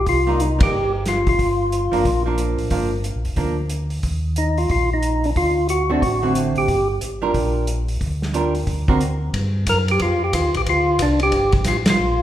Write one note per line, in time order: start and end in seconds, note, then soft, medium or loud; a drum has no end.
0.06 0.69 C2 medium
0.06 0.42 F4 medium
0.06 kick soft
0.06 open hi-hat soft
0.27 0.38 G3 medium
0.27 0.38 A#3 medium
0.27 0.38 D#4 medium
0.40 0.60 D#4 medium
0.40 closed hi-hat soft
0.59 0.70 G3 medium
0.59 0.71 A#3 medium
0.59 0.71 D#4 medium
0.59 kick medium
0.59 ride medium
0.63 0.92 G4 medium
0.72 1.35 G1 medium
1.06 1.28 F4 medium
1.06 snare soft
1.06 closed hi-hat soft
1.27 2.23 F4 medium
1.27 kick soft
1.27 open hi-hat soft
1.39 1.89 G1 medium
1.39 kick soft
1.39 open hi-hat soft
1.72 closed hi-hat soft
1.92 2.03 F#1 medium
1.92 2.03 F3 medium
1.92 2.04 A#3 medium
1.92 2.04 D4 medium
1.92 open hi-hat soft
2.05 2.55 A#1 medium
2.05 kick soft
2.05 open hi-hat soft
2.26 2.68 F3 medium
2.26 2.69 A#3 medium
2.26 2.69 D4 medium
2.38 closed hi-hat soft
2.58 2.69 A1 medium
2.58 open hi-hat soft
2.70 3.12 G1 medium
2.70 2.90 F3 medium
2.70 2.90 A#3 medium
2.70 2.90 D4 medium
2.70 kick soft
2.70 open hi-hat soft
3.04 closed hi-hat soft
3.15 3.25 A#1 medium
3.25 3.36 F1 medium
3.25 open hi-hat soft
3.36 4.00 D2 medium
3.36 3.56 F3 soft
3.36 3.56 A#3 medium
3.36 3.56 D4 medium
3.36 kick soft
3.36 open hi-hat soft
3.70 closed hi-hat soft
3.90 open hi-hat soft
4.03 4.66 D#2 medium
4.03 kick soft
4.03 open hi-hat soft
4.36 4.59 D#4 medium
4.36 closed hi-hat soft
4.58 4.70 F4 medium
4.58 open hi-hat soft
4.69 5.32 A#1 medium
4.69 4.90 F4 medium
4.69 kick soft
4.69 open hi-hat soft
4.94 5.26 D#4 medium
5.03 closed hi-hat soft
5.24 5.31 D4 medium
5.24 open hi-hat soft
5.36 5.99 D2 medium
5.36 5.67 F4 medium
5.36 kick soft
5.36 open hi-hat soft
5.69 5.91 F#4 medium
5.69 closed hi-hat soft
5.90 6.01 D3 medium
5.90 6.01 A3 medium
5.90 6.01 C4 medium
5.90 6.03 D4 medium
5.90 6.01 F#4 medium
6.02 6.53 A1 medium
6.02 6.33 F#4 medium
6.02 kick soft
6.02 open hi-hat soft
6.22 6.65 D3 medium
6.22 6.66 A3 medium
6.22 6.66 C4 medium
6.22 6.66 F#4 medium
6.35 closed hi-hat medium
6.56 6.67 A1 medium
6.56 6.88 G4 medium
6.56 open hi-hat soft
6.68 6.99 G1 medium
6.68 kick soft
6.68 open hi-hat soft
7.01 7.32 G#1 medium
7.01 closed hi-hat soft
7.22 7.65 G3 medium
7.22 7.65 D4 medium
7.22 7.65 F4 medium
7.22 7.66 A#4 medium
7.34 7.97 A#1 medium
7.34 kick soft
7.34 open hi-hat soft
7.67 closed hi-hat soft
7.88 open hi-hat soft
8.01 8.64 D2 medium
8.01 kick soft
8.01 open hi-hat soft
8.22 snare soft
8.34 8.53 G3 medium
8.34 8.53 D4 medium
8.34 8.53 F4 medium
8.34 8.54 A#4 medium
8.34 closed hi-hat soft
8.55 open hi-hat soft
8.67 9.30 D2 medium
8.67 kick soft
8.67 open hi-hat soft
8.88 8.99 D3 medium
8.88 8.99 C4 medium
8.88 9.00 F#4 medium
8.88 9.00 A#4 medium
8.88 kick medium
9.01 closed hi-hat soft
9.34 9.66 G2 medium
9.34 kick soft
9.34 ride medium
9.67 9.99 F#2 medium
9.67 9.78 A#4 loud
9.67 kick soft
9.67 hi-hat pedal medium
9.67 ride medium
9.88 10.01 G4 medium
9.88 ride soft
9.99 10.32 F2 medium
9.99 10.23 F4 medium
9.99 kick soft
9.99 ride medium
10.24 10.34 G4 medium
10.33 10.44 D#2 medium
10.33 10.55 F4 medium
10.33 kick soft
10.33 hi-hat pedal soft
10.33 ride medium
10.44 10.55 D2 medium
10.54 10.65 A#1 medium
10.54 10.62 G4 medium
10.54 ride soft
10.66 10.98 D2 medium
10.66 11.02 F4 medium
10.66 kick soft
10.66 ride medium
10.99 11.31 C2 medium
10.99 11.20 D4 medium
10.99 kick soft
10.99 hi-hat pedal medium
10.99 ride medium
11.20 11.52 G4 loud
11.20 ride soft
11.32 11.64 G1 medium
11.32 kick soft
11.32 ride medium
11.52 kick soft
11.52 ride soft
11.64 11.85 A1 medium
11.64 11.77 F4 medium
11.64 kick soft
11.64 snare soft
11.64 hi-hat pedal medium
11.64 ride medium
11.86 11.93 A1 soft
11.86 snare medium
11.86 ride medium
11.90 12.22 F4 medium
11.99 12.22 A#1 medium